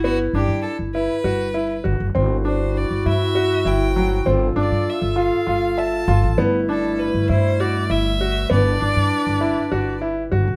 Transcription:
X:1
M:7/8
L:1/16
Q:1/4=99
K:G
V:1 name="Violin"
F2 G2 A2 B6 z2 | z2 c2 d2 e4 g4 | z2 d2 e2 =f4 a4 | z2 A2 B2 c2 d2 e4 |
d8- d2 z4 |]
V:2 name="Clarinet"
E12 z2 | F12- F2 | =F12- F2 | E12 z2 |
D12 z2 |]
V:3 name="Grand piano"
B,2 D4 E2 F2 E2 F2 | C2 D4 E2 F2 E2 F,2 | C2 D4 =F2 F2 e2 F2 | B,2 D4 E2 F2 E2 F2 |
B,2 D4 E2 F2 E2 F2 |]
V:4 name="Woodwind section"
z12 z2 | [CE]12- [CE]2 | [=FA]12- [FA]2 | [B,,G,A,]12- [B,,G,A,]2 |
[G,EB]12- [G,EB]2 |]
V:5 name="Upright bass" clef=bass
G,,,2 G,,, G,, z G,,,2 z G,,,4 G,,, F,,, | G,,,4- G,,, G,,, G,,4 G,,,4 | G,,,2 G,,, G,, z G,,,2 z G,,,4 G,,, A,,, | G,,,4- G,,, G,,, G,,4 G,,,4 |
G,,,2 G,,, G,, z G,,,2 z G,,,4 G,,, B,,, |]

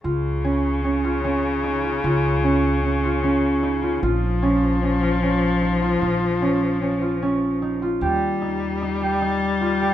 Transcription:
X:1
M:5/4
L:1/8
Q:1/4=151
K:Dblyd
V:1 name="Harp"
F2 D2 D F D2 E F | F2 D2 D F D2 E F | F2 D2 D F D2 E F | F2 D2 D F D2 E F |
G2 E2 E G E2 F G |]
V:2 name="Cello" clef=bass
D,8- D,2- | D,8- D,2 | F,8- F,2- | F,8- F, z |
G,8- G,2 |]
V:3 name="Upright bass" clef=bass
D,,8- D,,2 | D,,8- D,,2 | B,,,8- B,,,2 | B,,,8- B,,,2 |
E,,8- E,,2 |]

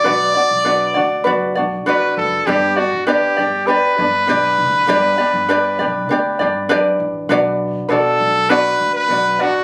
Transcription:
X:1
M:4/4
L:1/16
Q:1/4=100
K:Bm
V:1 name="Trumpet"
d8- d z3 B2 A2 | G2 F2 G4 B8- | B12 z4 | z4 A4 B3 B3 F2 |]
V:2 name="Ukulele"
[DFBd]2 [DFd]2 [DFBd]2 [DFd]2 [DFBd]2 [DFd]2 [DFBd]4 | [DGBd]2 [Dd]2 [DGBd]2 [DGd]2 [DGBd]2 [DGd]2 [DGBd]4 | [DGBd]2 [DGd]2 [DGBd]2 [DGd]2 [DGBd]2 [DGd]2 [DGBd]4 | [DFBd]4 [DFBd]4 [DFBd]4 [DFBd]2 [DFd]2 |]
V:3 name="Upright bass" clef=bass
B,,,2 z B,,,3 D,,2 F,,,2 B,,,2 A,,,2 F,,,2 | G,,,3 A,,,2 z G,,,3 z G,,,2 B,,,2 F,,,2 | G,,,2 z G,,,3 B,,,2 D,,2 G,,2 F,,2 A,,,2 | B,,,4 B,,2 B,,,4 D,,2 B,,,2 A,,,2 |]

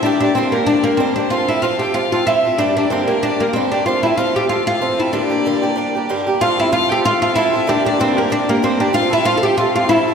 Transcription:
X:1
M:4/4
L:1/16
Q:"Swing" 1/4=189
K:F
V:1 name="Fiddle"
d2 d2 c2 B2 d2 B2 c4 | f2 e2 f2 g2 f2 f2 e4 | d2 d2 c2 B2 d2 B2 c2 d2 | f2 e2 f2 g2 f2 f4 e2 |
d12 z4 | f4 f2 g2 f2 f2 e4 | d2 d2 c2 B2 d2 B2 c2 d2 | f2 e2 f2 g2 f2 f2 e4 |]
V:2 name="Oud"
D2 D2 C2 B,2 D2 B,2 C2 D2 | F2 E2 F2 G2 F2 F2 E4 | D2 D2 C2 B,2 D2 B,2 C2 D2 | F2 E2 F2 G2 F2 F4 E2 |
D12 z4 | F2 E2 F2 G2 F2 F2 E4 | D2 D2 C2 B,2 D2 B,2 C2 D2 | F2 E2 F3/2 A/2 G2 F2 F2 E4 |]
V:3 name="Steel-string acoustic guitar"
[G,,D,G,B,DG]2 [G,B,DG]2 [G,,D,G,B,DG]2 [G,B,DG]2 [G,B,DG]2 [G,B,DG]2 [G,,D,G,B,DG]2 [G,B,DG]2 | [F,CFA]2 [CFA]2 [F,CFA]2 [CFA]2 [F,CFA]2 [CFA]2 [F,CFA]2 [CFA]2 | [G,,D,G,B,DG]2 [G,B,DG]2 [G,,D,G,B,DG]2 [G,B,DG]2 [G,B,DG]2 [G,B,DG]2 [G,,D,G,B,DG]2 [G,B,DG]2 | [F,CFA]2 [CFA]2 [F,CFA]2 [CFA]2 [F,CFA]2 [CFA]2 [F,CFA]2 [CFA]2 |
[G,,D,G,B,DG]2 [G,B,DG]2 [G,,D,G,B,DG]2 [G,B,DG]2 [G,B,DG]2 [G,B,DG]2 [G,,D,G,B,DG]2 [G,B,DG]2 | [F,CFA]2 [CFA]2 [F,CFA]2 [CFA]2 [F,CFA]2 [CFA]2 [F,CFA]2 [CFA]2 | [G,,D,G,B,DG]2 [G,B,DG]2 [G,,D,G,B,DG]2 [G,B,DG]2 [G,B,DG]2 [G,B,DG]2 [G,,D,G,B,DG]2 [G,B,DG]2 | [F,CFA]2 [CFA]2 [F,CFA]2 [CFA]2 [F,CFA]2 [CFA]2 [F,CFA]2 [CFA]2 |]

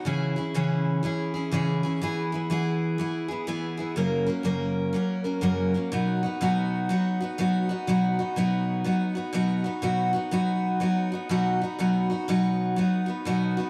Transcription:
X:1
M:4/4
L:1/8
Q:"Swing" 1/4=123
K:B
V:1 name="Steel-string acoustic guitar"
[C,E,CEG] [CEG] [C,E,CEG]2 [E,CEG] [CEG] [C,E,CEG] [CEG] | [E,B,EG] [B,EG] [E,B,EG]2 [E,B,EG] [B,EG] [E,B,EG] [B,EG] | [F,,C,F,A,CA] [F,A,CA] [F,,C,F,A,CA]2 [F,A,CA] [F,A,CA] [F,,C,F,A,CA] [F,A,CA] | [B,,F,B,DF] [B,DF] [B,,F,B,DF]2 [F,B,DF] [B,DF] [B,,F,B,DF] [B,DF] |
[B,,F,B,DF] [B,DF] [B,,F,B,DF]2 [F,B,DF] [B,DF] [B,,F,B,DF] [B,DF] | [B,,F,B,DF] [B,DF] [B,,F,B,DF]2 [F,B,DF] [B,DF] [B,,F,B,DF] [B,DF] | [B,,F,B,DF] [B,DF] [B,,F,B,DF]2 [F,B,DF] [B,DF] [B,,F,B,DF] [B,DF] |]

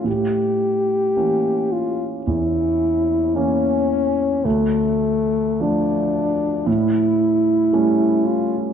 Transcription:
X:1
M:4/4
L:1/8
Q:1/4=55
K:Aphr
V:1 name="French horn"
G3 F E2 ^C2 | A,2 D2 E3 F |]
V:2 name="Grand piano" clef=bass
A,,2 [E,B,^C]2 E,,2 [E,B,C]2 | D,,2 [F,A,D]2 A,,2 [G,A,^C]2 |]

